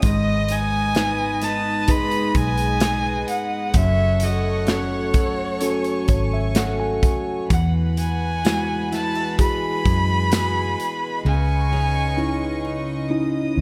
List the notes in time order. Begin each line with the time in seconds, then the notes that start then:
Already playing: C#4 D#4 G#4 D#6
0.02 G#1 G#2 G#3 B4 D#5, kick, closed hi-hat
0.48 B3 D#4 G#5, closed hi-hat
0.95 B3 D#4 B4, snare, closed hi-hat
1.42 D#4 A5, snare, closed hi-hat
1.88 G#3 D#4 G#4 B4 B5, kick, closed hi-hat
2.11 closed hi-hat
2.35 B1 G#5, kick, closed hi-hat
2.58 closed hi-hat
2.80 B3 D#4 G#4, snare, closed hi-hat
3.28 F#5, closed hi-hat
3.74 F#1 F#2 F#3 A4 C#5 E5 F#5 C#6, kick, closed hi-hat
4.20 A3 F#4 A4 D#5, closed hi-hat
4.67 A3 C#4 F#4 A4 C#5, snare, closed hi-hat
5.14 F#4, kick, closed hi-hat
5.61 F#3 C#4 F#4 A4 G#5, closed hi-hat
5.84 closed hi-hat
6.08 G#1 C#5, kick, closed hi-hat
6.33 E5
6.55 A3 F#4 A4 F#5, snare, closed hi-hat
6.80 G#5
7.03 kick, closed hi-hat
7.50 E2 E3 G#3 B4 F#5 B5, kick, closed hi-hat
7.97 B3 F#4 G#5, closed hi-hat
8.45 G#3 B3 E4 F#4, snare, closed hi-hat, tambourine
8.92 E4 A5, snare, closed hi-hat
9.15 F#4
9.39 B3 E4 F#4 G#4 G#5 B5, kick, closed hi-hat
9.85 F#2, kick, closed hi-hat
10.32 B3 F#4 G#4, snare, closed hi-hat, tambourine
10.80 closed hi-hat
11.25 C#2 C#3 D#5 G#5 C#6
11.72 C#4 D#4 G#4
12.17 C#4 D#4 E4
12.65 D#4
13.10 C#4 D#4 E4 D#6
13.57 D#2